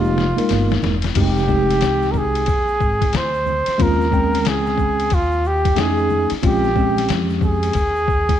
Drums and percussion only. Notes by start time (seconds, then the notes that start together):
0.05 shaker
0.17 snare, shaker
0.37 ride, high conga, shaker
0.49 snare, hi-hat pedal, ride, shaker
0.70 snare, high conga, shaker
0.82 snare, low conga, shaker
1.02 snare, ride, shaker
1.15 kick, crash, ride, shaker
1.37 snare, shaker
1.48 kick, shaker
1.70 snare, ride, high conga, shaker
1.81 snare, hi-hat pedal, ride, shaker
2.02 snare, shaker
2.14 kick, low conga, shaker
2.35 ride, shaker
2.46 kick, ride, shaker
2.68 shaker
2.81 kick, shaker
3.01 kick, ride, high conga, shaker
3.13 snare, hi-hat pedal, ride, shaker
3.34 shaker
3.46 high conga, low conga, shaker
3.66 snare, ride, shaker
3.79 kick, ride, shaker
4.01 snare, shaker
4.12 kick, shaker
4.33 snare, ride, high conga, shaker
4.45 snare, hi-hat pedal, ride, shaker
4.66 snare, shaker
4.78 kick, low conga, shaker
5.00 ride, shaker
5.10 kick, ride, shaker
5.32 shaker
5.45 shaker
5.65 kick, ride, high conga, shaker
5.76 snare, hi-hat pedal, ride, shaker
5.98 shaker
6.10 high conga, low conga, shaker
6.30 snare, ride, shaker
6.42 kick, ride, shaker
6.64 snare, shaker
6.76 kick, shaker
6.97 snare, ride, high conga, shaker
7.09 snare, hi-hat pedal, ride, shaker
7.30 snare, shaker
7.41 kick, low conga, shaker
7.63 ride, shaker
7.73 kick, ride, shaker
7.96 shaker
8.08 kick, shaker
8.29 kick, ride, high conga, shaker